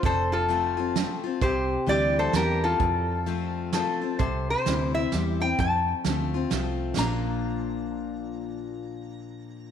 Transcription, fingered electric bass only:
X:1
M:3/4
L:1/8
Q:"Swing" 1/4=130
K:Bb
V:1 name="Fingered electric bass" clef=bass
F,,,6 | C,,2 D,,2 =E,,2 | F,,6 | C,,2 D,,2 =E,,2 |
F,,2 D,,2 C,,2 | B,,,6- | B,,,6 |]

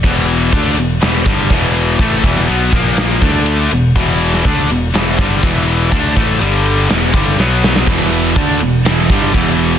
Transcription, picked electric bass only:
X:1
M:4/4
L:1/8
Q:1/4=122
K:Dlyd
V:1 name="Picked electric bass" clef=bass
E,,,2 D,, E,,, E,,, =G,,, E,,,2 | A,,, E,,, B,,, ^A,,,2 D,,2 E,,, | E,,,2 D,, E,,, E,,, z E,,,2 | D,, A,,, =G,,,2 E,,, G,,, B,,,2 |
E,,,2 D,, E,,, E,,, =G,,, E,,,2 |]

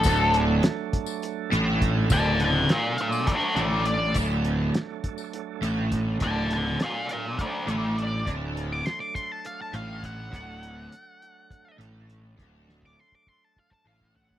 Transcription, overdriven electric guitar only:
X:1
M:7/8
L:1/8
Q:1/4=102
K:D
V:1 name="Overdriven electric guitar" clef=bass
D,,2 z3 A,,2 | D,,2 z3 A,,2 | D,,2 z3 A,,2 | D,,2 z3 A,,2 |
D,,2 z3 A,,2 | D,,2 z3 A,,2 | D,,2 z3 A,,2 |]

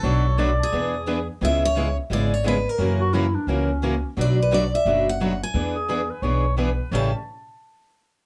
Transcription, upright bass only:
X:1
M:4/4
L:1/8
Q:"Swing" 1/4=174
K:A
V:1 name="Upright bass" clef=bass
B,,,4 E,,4 | C,,4 G,,,4 | F,,4 C,,4 | B,,,4 F,,,4 |
E,,4 B,,,4 | A,,, z6 z |]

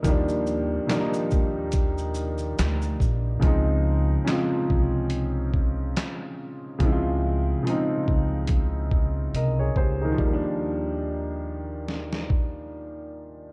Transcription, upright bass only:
X:1
M:4/4
L:1/8
Q:"Swing 16ths" 1/4=71
K:Eb
V:1 name="Upright bass" clef=bass
E,,2 z E,,3 D,, B,,, | _D,,2 z C,,3 z2 | _D,,2 z D,,3 C,, D,, | E,,8 |]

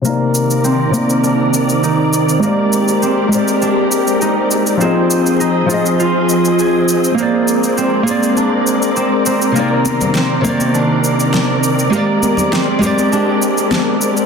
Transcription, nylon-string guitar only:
X:1
M:4/4
L:1/8
Q:1/4=101
K:Cm
V:1 name="Nylon-string guitar"
[C,B,Ed]3 [C,E,B,d]4- [C,E,B,d] | [A,GBcd]3 [A,GBcd]4- [A,GBcd] | [F,FAe]3 [F,FAe]4- [F,FAe] | [B,Acd]3 [B,Acd]4- [B,Acd] |
[C,B,Ed]3 [C,E,B,d]4- [C,E,B,d] | [A,GBcd]3 [A,GBcd]4- [A,GBcd] |]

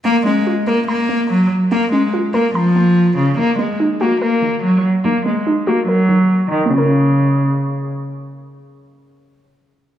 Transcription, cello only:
X:1
M:4/4
L:1/8
Q:1/4=144
K:Bbm
V:1 name="Cello" clef=bass
B, A, z B, B,2 G, z | B, A, z B, F,3 D, | B, A, z B, B,2 G, z | B, A, z B, G,3 E, |
D,6 z2 | z8 |]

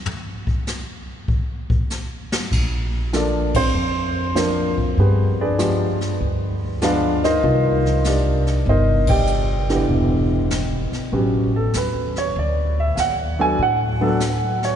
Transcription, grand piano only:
X:1
M:4/4
L:1/8
Q:"Swing" 1/4=98
K:Bb
V:1 name="Grand piano"
z8 | z2 [DABd] [Cc]3 [FB]2 | [=B,G_A=B] [DABd]3 z2 [FBdf] [E_Bce]- | [EBce]2 [DGBd]2 [EBce] [Gdeg]3 |
z4 z A =B ^c | d =e [f^f] _a f3 _d |]
V:2 name="Grand piano"
z8 | z2 [F,B,DA] z3 [F,B,Dc] z | z2 [F,_A,=B,G] z3 [F,A,B,D] z | [E,B,EF]3 z4 [D,=E,_CG]- |
[D,=E,_CG]2 z2 [^F,=B,^CG] z3 | z3 [^F,=B,DA] z [F,B,DA] z2 |]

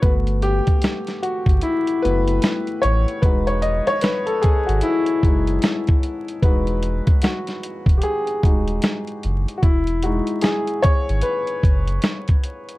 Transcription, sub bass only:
X:1
M:4/4
L:1/16
Q:"Swing 16ths" 1/4=75
K:E
V:1 name="Sub bass" clef=bass
=G,,,3 z4 G,,, z2 F,,,2 z2 A,,, z | E,,,3 z4 G,,, z2 F,,,2 z4 | E,,,3 z4 E,,, z2 D,,,2 z2 F,,, z | E,,,3 z4 G,,, z2 F,,,2 z4 |]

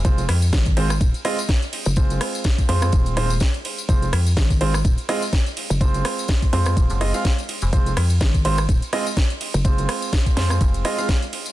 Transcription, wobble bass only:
X:1
M:4/4
L:1/16
Q:"Swing 16ths" 1/4=125
K:Fphr
V:1 name="Wobble bass" clef=bass
F,,,2 z2 A,,,4 E,,, z6 G,,,- | G,,,2 z4 F,,2 E,,,4 z4 | F,,,2 z2 A,,,4 E,,, z6 G,,,- | G,,,2 z4 F,,2 E,,, z6 z |
F,,,2 z2 A,,,4 E,,, z6 G,,,- | G,,,2 z4 F,,2 z8 |]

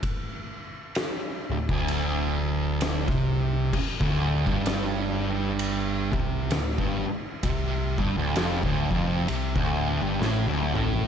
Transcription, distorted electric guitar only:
X:1
M:4/4
L:1/16
Q:"Swing" 1/4=65
K:Dm
V:1 name="Distorted electric guitar" clef=bass
z6 D,, D,,6 C,3 | z D,,2 G,,6- G,, C,2 D,, G,, z2 | C,2 G,, D,, F,, D,, F,,2 C, D,,2 G,, A,, D,, A,,2 |]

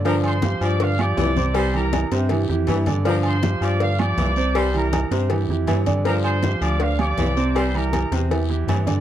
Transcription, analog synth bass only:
X:1
M:4/4
L:1/8
Q:1/4=160
K:Cmix
V:1 name="Analog synth bass" clef=bass
G,,3 G,,3 C,,2- | C,,3 G,,2 F,, G,,2- | G,,3 G,,3 C,,2- | C,,3 G,,2 F,, G,,2- |
G,,3 D,,3 C,,2- | C,,3 E,,3 G,,2 |]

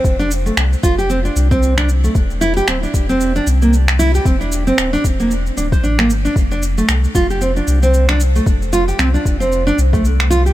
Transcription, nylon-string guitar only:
X:1
M:4/4
L:1/16
Q:"Swing 16ths" 1/4=114
K:F
V:1 name="Nylon-string guitar"
C D z A, z2 F G C D2 C2 D z A, | z2 E G C D2 C2 D z B, z2 E G | C D2 C2 D z B, z2 D c D B, z D | z D z A, z2 F G C D2 C2 D z A, |
z2 F G C D2 C2 D z A, z2 F G |]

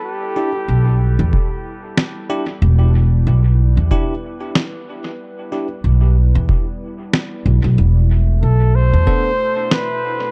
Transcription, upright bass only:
X:1
M:4/4
L:1/16
Q:"Swing 16ths" 1/4=93
K:Em
V:1 name="Upright bass" clef=bass
z4 B,,,3 E,, z8 | E,,,4 B,,,3 E,, z8 | z4 B,,,3 E,, z6 B,,, B,,, | E,,,4 B,,,3 E,, z8 |]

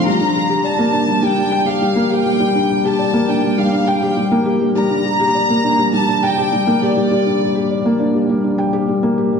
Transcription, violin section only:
X:1
M:4/4
L:1/16
Q:1/4=102
K:Cdor
V:1 name="Violin section"
b4 a4 g3 f3 g2- | g3 a3 g2 f2 g4 z2 | b8 a2 g4 d2- | d6 z8 z2 |]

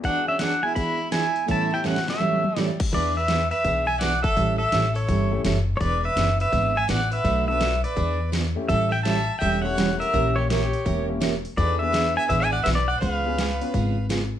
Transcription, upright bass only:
X:1
M:4/4
L:1/8
Q:"Swing" 1/4=166
K:Emix
V:1 name="Upright bass" clef=bass
z8 | z8 | E,,4 B,,,4 | A,,,2 A,,,2 =G,,,2 F,,,2 |
E,,,2 F,,,2 G,,,2 A,,,2 | B,,,4 E,,4 | A,,,4 E,,,4 | ^A,,,4 E,,,4 |
E,,4 A,,,2 B,,,2 | C,,4 G,,,4 |]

